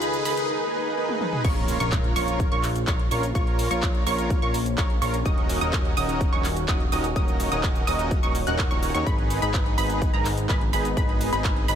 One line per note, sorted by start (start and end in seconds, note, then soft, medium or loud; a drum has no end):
0.00 0.46 C#2 medium
0.00 0.46 C#3 medium
0.00 0.24 D#4 medium
0.00 0.46 F4 medium
0.00 0.45 G#4 medium
0.00 0.49 G#4 loud
0.00 0.24 G#4 medium
0.00 0.24 B4 loud
0.00 0.24 B5 medium
0.00 closed hi-hat medium
0.00 riser medium
0.00 shaker soft
0.14 closed hi-hat soft
0.14 shaker soft
0.25 0.48 D#4 medium
0.25 0.47 G#4 medium
0.25 0.47 B4 loud
0.25 0.47 B5 loud
0.25 open hi-hat loud
0.25 shaker medium
0.37 closed hi-hat medium
0.37 shaker soft
0.49 0.71 D#4 medium
0.49 0.71 G#4 medium
0.49 0.71 B4 loud
0.49 swell medium
0.73 0.95 D#4 medium
0.73 0.95 G#4 medium
0.73 0.95 B4 loud
0.97 1.19 D#4 medium
0.97 1.19 G#4 medium
0.97 1.19 B4 loud
1.09 high tom medium
1.21 1.43 D#4 medium
1.21 1.43 G#4 medium
1.21 1.43 B4 loud
1.21 mid tom medium
1.33 mid tom medium
1.44 1.78 A#1 medium
1.44 9.03 A#3 medium
1.44 9.03 C#4 medium
1.44 5.22 F4 medium
1.44 1.77 A#4 medium
1.44 1.77 C#5 loud
1.44 1.77 C#6 loud
1.44 kick loud
1.44 closed hi-hat medium
1.44 crash loud
1.44 impact medium
1.44 shaker soft
1.56 closed hi-hat soft
1.68 open hi-hat loud
1.68 shaker medium
1.80 2.14 A#1 loud
1.80 2.13 F4 medium
1.80 2.13 A#4 medium
1.80 2.13 C#5 loud
1.80 2.13 C#6 medium
1.80 closed hi-hat medium
1.80 shaker soft
1.92 kick loud
1.92 clap loud
1.92 closed hi-hat medium
1.92 shaker soft
2.04 closed hi-hat soft
2.16 2.49 A#1 loud
2.16 2.49 F4 loud
2.16 2.49 A#4 medium
2.16 2.49 C#5 loud
2.16 2.49 C#6 loud
2.16 open hi-hat loud
2.16 shaker medium
2.28 closed hi-hat medium
2.28 shaker soft
2.40 kick loud
2.40 closed hi-hat medium
2.40 shaker soft
2.52 2.85 A#1 loud
2.52 2.66 F4 medium
2.52 2.66 A#4 medium
2.52 2.66 C#5 loud
2.52 2.66 C#6 loud
2.52 closed hi-hat soft
2.63 clap medium
2.63 open hi-hat loud
2.63 shaker medium
2.76 closed hi-hat medium
2.76 shaker soft
2.87 3.09 A#1 loud
2.87 3.01 F4 medium
2.87 3.01 A#4 medium
2.87 3.01 C#5 medium
2.87 3.01 C#6 medium
2.87 kick loud
2.87 clap loud
2.87 closed hi-hat medium
2.87 shaker soft
2.99 closed hi-hat soft
3.11 3.33 A#1 loud
3.11 3.25 F4 medium
3.11 3.25 A#4 medium
3.11 3.25 C#5 medium
3.11 3.25 C#6 medium
3.11 open hi-hat loud
3.11 shaker medium
3.23 closed hi-hat medium
3.23 shaker soft
3.35 3.69 A#1 medium
3.35 3.68 F4 medium
3.35 3.68 A#4 medium
3.35 3.68 C#5 loud
3.35 3.68 C#6 medium
3.35 kick loud
3.35 closed hi-hat medium
3.35 shaker soft
3.47 closed hi-hat soft
3.59 open hi-hat loud
3.59 shaker medium
3.71 4.04 A#1 loud
3.71 4.04 F4 medium
3.71 4.04 A#4 medium
3.71 4.04 C#5 loud
3.71 4.04 C#6 medium
3.71 closed hi-hat medium
3.71 shaker soft
3.83 kick loud
3.83 clap loud
3.83 closed hi-hat medium
3.83 shaker soft
3.95 closed hi-hat soft
4.07 4.40 A#1 loud
4.07 4.39 F4 loud
4.07 4.39 A#4 medium
4.07 4.39 C#5 loud
4.07 4.39 C#6 loud
4.07 open hi-hat loud
4.07 shaker medium
4.18 closed hi-hat medium
4.18 shaker soft
4.30 kick loud
4.30 closed hi-hat medium
4.30 shaker soft
4.42 4.76 A#1 loud
4.42 4.56 F4 medium
4.42 4.56 A#4 medium
4.42 4.56 C#5 loud
4.42 4.56 C#6 loud
4.42 closed hi-hat soft
4.54 open hi-hat loud
4.54 shaker medium
4.66 closed hi-hat medium
4.66 shaker soft
4.78 4.99 A#1 loud
4.78 4.92 F4 medium
4.78 4.92 A#4 medium
4.78 4.92 C#5 medium
4.78 4.92 C#6 medium
4.78 kick loud
4.78 clap loud
4.78 closed hi-hat medium
4.78 shaker soft
4.90 closed hi-hat soft
5.02 5.23 A#1 loud
5.02 5.16 F4 medium
5.02 5.16 A#4 medium
5.02 5.16 C#5 medium
5.02 5.16 C#6 medium
5.02 open hi-hat loud
5.02 shaker medium
5.14 closed hi-hat medium
5.14 shaker soft
5.26 5.59 D#1 loud
5.26 9.03 D#3 medium
5.26 5.59 C#4 medium
5.26 5.59 D#4 medium
5.26 5.59 F#4 medium
5.26 9.03 F#4 medium
5.26 5.59 A#4 medium
5.26 5.59 D#5 medium
5.26 5.58 D#6 medium
5.26 kick loud
5.26 closed hi-hat soft
5.26 shaker soft
5.38 closed hi-hat soft
5.49 open hi-hat loud
5.49 shaker medium
5.61 5.95 D#1 loud
5.61 5.94 C#4 medium
5.61 5.94 D#4 medium
5.61 5.94 F#4 medium
5.61 5.94 A#4 medium
5.61 5.94 D#5 medium
5.61 5.94 D#6 loud
5.61 closed hi-hat medium
5.61 shaker soft
5.73 kick loud
5.73 clap loud
5.73 closed hi-hat medium
5.73 shaker soft
5.85 closed hi-hat soft
5.97 6.30 D#1 loud
5.97 6.30 C#4 loud
5.97 6.30 D#4 medium
5.97 6.30 F#4 medium
5.97 6.30 A#4 medium
5.97 6.30 D#5 loud
5.97 6.30 D#6 loud
5.97 open hi-hat loud
5.97 shaker medium
6.09 closed hi-hat medium
6.09 shaker soft
6.21 kick loud
6.21 closed hi-hat medium
6.21 shaker soft
6.33 6.66 D#1 loud
6.33 6.47 C#4 medium
6.33 6.47 D#4 medium
6.33 6.47 F#4 medium
6.33 6.47 A#4 medium
6.33 6.47 C#5 loud
6.33 6.46 C#6 loud
6.33 closed hi-hat soft
6.44 clap medium
6.44 open hi-hat loud
6.44 shaker medium
6.57 closed hi-hat medium
6.57 shaker soft
6.68 6.90 D#1 loud
6.68 6.82 C#4 medium
6.68 6.82 D#4 medium
6.68 6.82 F#4 medium
6.68 6.82 A#4 medium
6.68 6.82 D#5 medium
6.68 6.82 D#6 medium
6.68 kick loud
6.68 clap loud
6.68 closed hi-hat medium
6.68 shaker soft
6.80 closed hi-hat soft
6.92 7.14 D#1 loud
6.92 7.06 C#4 medium
6.92 7.06 D#4 medium
6.92 7.06 F#4 medium
6.92 7.06 A#4 medium
6.92 7.06 D#5 medium
6.92 7.06 D#6 medium
6.92 open hi-hat loud
6.92 shaker medium
7.04 closed hi-hat medium
7.04 shaker soft
7.16 7.49 D#1 loud
7.16 7.49 C#4 medium
7.16 7.49 D#4 medium
7.16 7.49 F#4 medium
7.16 7.49 A#4 medium
7.16 7.49 D#5 loud
7.16 7.49 D#6 loud
7.16 kick loud
7.16 closed hi-hat soft
7.16 shaker soft
7.28 closed hi-hat soft
7.28 shaker soft
7.40 open hi-hat loud
7.40 shaker medium
7.52 7.85 D#1 loud
7.52 7.85 C#4 medium
7.52 7.85 D#4 medium
7.52 7.85 F#4 medium
7.52 7.85 A#4 medium
7.52 7.85 D#5 medium
7.52 7.85 D#6 medium
7.52 closed hi-hat soft
7.52 shaker soft
7.63 kick loud
7.63 clap loud
7.63 closed hi-hat soft
7.63 shaker soft
7.75 closed hi-hat soft
7.75 shaker soft
7.87 8.21 D#1 loud
7.87 8.20 C#4 loud
7.87 8.20 D#4 medium
7.87 8.20 F#4 medium
7.87 8.20 A#4 medium
7.87 8.20 D#5 loud
7.87 8.20 D#6 loud
7.87 open hi-hat loud
7.87 shaker medium
7.99 closed hi-hat medium
7.99 shaker soft
8.11 kick loud
8.11 closed hi-hat medium
8.11 shaker soft
8.23 8.45 D#1 loud
8.23 8.37 C#4 medium
8.23 8.37 D#4 medium
8.23 8.37 F#4 medium
8.23 8.37 A#4 medium
8.23 8.37 C#5 loud
8.23 8.37 C#6 loud
8.23 closed hi-hat soft
8.23 shaker soft
8.35 open hi-hat loud
8.35 shaker medium
8.47 8.69 D#1 loud
8.47 8.68 C#4 medium
8.47 8.68 D#4 medium
8.47 8.68 F#4 medium
8.47 8.68 A#4 medium
8.47 8.68 F#5 medium
8.47 8.68 F#6 medium
8.47 closed hi-hat soft
8.47 shaker soft
8.59 kick loud
8.59 clap loud
8.59 closed hi-hat medium
8.59 shaker soft
8.71 8.92 D#1 loud
8.71 8.92 C#4 medium
8.71 8.92 D#4 medium
8.71 8.92 F#4 medium
8.71 8.92 A#4 medium
8.71 8.92 C#5 medium
8.71 8.92 C#6 medium
8.71 closed hi-hat soft
8.71 shaker soft
8.83 open hi-hat loud
8.83 shaker medium
8.95 9.04 D#2 loud
8.95 9.05 C#4 medium
8.95 9.05 D#4 medium
8.95 9.05 F#4 medium
8.95 9.05 A#4 medium
8.95 9.05 C#5 medium
8.95 9.05 C#6 medium
8.95 closed hi-hat medium
8.95 shaker soft
9.06 9.40 G#1 loud
9.06 11.75 G#3 medium
9.06 11.75 B3 medium
9.06 11.75 D#4 medium
9.06 9.39 D#4 medium
9.06 9.39 G#4 medium
9.06 9.39 B4 loud
9.06 9.39 B5 medium
9.06 kick loud
9.06 closed hi-hat medium
9.06 shaker soft
9.19 closed hi-hat soft
9.30 open hi-hat loud
9.30 shaker medium
9.42 9.76 G#1 loud
9.42 9.75 D#4 medium
9.42 9.75 G#4 medium
9.42 9.75 B4 medium
9.42 9.75 B5 medium
9.42 closed hi-hat medium
9.42 shaker soft
9.54 kick loud
9.54 clap loud
9.54 closed hi-hat medium
9.54 shaker soft
9.66 closed hi-hat soft
9.78 10.11 G#1 loud
9.78 10.11 D#4 loud
9.78 10.11 G#4 medium
9.78 10.11 B4 loud
9.78 10.11 B5 loud
9.78 open hi-hat loud
9.78 shaker medium
9.90 closed hi-hat medium
9.90 shaker soft
10.02 kick loud
10.02 closed hi-hat medium
10.02 shaker soft
10.14 10.47 G#1 loud
10.14 10.27 D#4 medium
10.14 10.28 G#4 medium
10.14 10.28 A#4 loud
10.14 10.27 A#5 loud
10.14 closed hi-hat soft
10.25 clap medium
10.25 open hi-hat loud
10.25 shaker medium
10.38 closed hi-hat medium
10.38 shaker soft
10.49 10.71 G#1 loud
10.49 10.63 D#4 medium
10.49 10.63 G#4 medium
10.49 10.63 B4 medium
10.49 10.63 B5 medium
10.49 kick loud
10.49 clap loud
10.49 closed hi-hat medium
10.49 shaker soft
10.61 closed hi-hat soft
10.73 10.95 G#1 loud
10.73 10.87 D#4 medium
10.73 10.87 G#4 medium
10.73 10.87 B4 medium
10.73 10.87 B5 medium
10.73 open hi-hat loud
10.73 shaker medium
10.85 closed hi-hat medium
10.85 shaker soft
10.97 11.30 G#1 loud
10.97 11.30 D#4 medium
10.97 11.30 G#4 medium
10.97 11.30 B4 loud
10.97 11.30 B5 medium
10.97 kick loud
10.97 closed hi-hat medium
10.97 shaker soft
11.09 closed hi-hat soft
11.21 open hi-hat loud
11.21 shaker medium
11.33 11.66 G#1 loud
11.33 11.66 D#4 medium
11.33 11.66 G#4 medium
11.33 11.66 B4 loud
11.33 11.66 B5 medium
11.33 closed hi-hat medium
11.33 shaker soft
11.44 kick loud
11.44 clap loud
11.44 closed hi-hat medium
11.44 shaker soft
11.57 closed hi-hat soft
11.68 11.75 G#1 loud
11.68 11.75 D#4 loud
11.68 11.75 G#4 medium
11.68 11.75 B4 loud
11.68 11.75 B5 loud
11.68 open hi-hat loud
11.68 shaker medium